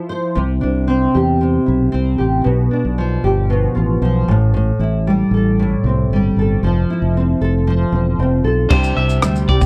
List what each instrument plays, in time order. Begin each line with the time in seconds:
Already playing: nylon-string guitar F3 E4 A4
0.09 nylon-string guitar C5
0.35 fingered electric bass C2, nylon-string guitar C3
0.61 fingered electric bass C2, nylon-string guitar D4
0.88 nylon-string guitar C4
1.15 fingered electric bass E2, nylon-string guitar G4
1.41 nylon-string guitar C3
1.66 fingered electric bass B1, nylon-string guitar E4
1.92 fingered electric bass C2, nylon-string guitar C4
2.18 fingered electric bass A1, nylon-string guitar G4
2.44 fingered electric bass B1, nylon-string guitar B2
2.71 nylon-string guitar D4
2.85 fingered electric bass B1
2.98 nylon-string guitar F3
3.24 fingered electric bass G1, nylon-string guitar G4
3.50 nylon-string guitar B2
3.75 fingered electric bass A1, nylon-string guitar F4
4.02 fingered electric bass B1, nylon-string guitar F3
4.28 fingered electric bass A1, nylon-string guitar A2
4.54 nylon-string guitar A2
4.79 fingered electric bass A1, nylon-string guitar E4
5.07 nylon-string guitar G3
5.31 fingered electric bass A1, nylon-string guitar A4
5.59 nylon-string guitar A2
5.84 fingered electric bass C2, nylon-string guitar C4
6.10 fingered electric bass G1, nylon-string guitar G3
6.37 fingered electric bass G1, nylon-string guitar A4
6.63 fingered electric bass F1, nylon-string guitar F3
6.90 nylon-string guitar E4
7.02 fingered electric bass F1
7.17 nylon-string guitar C4
7.41 fingered electric bass F1, nylon-string guitar A4
7.67 nylon-string guitar F3
7.92 fingered electric bass E1, nylon-string guitar C4
8.19 fingered electric bass F1, nylon-string guitar C4
8.44 fingered electric bass B1, nylon-string guitar A4
8.69 fingered electric bass C2, nylon-string guitar C3 G4, upright piano D4 G4 C5, clean electric guitar C5, kick, crash
8.73 upright piano G5
8.83 shaker
8.97 fingered electric bass C2, nylon-string guitar C4, clean electric guitar E5
9.10 shaker
9.22 fingered electric bass D2, nylon-string guitar G3, cross-stick, shaker
9.36 shaker
9.49 fingered electric bass C2, nylon-string guitar G4, clean electric guitar D5, kick
9.61 kick, shaker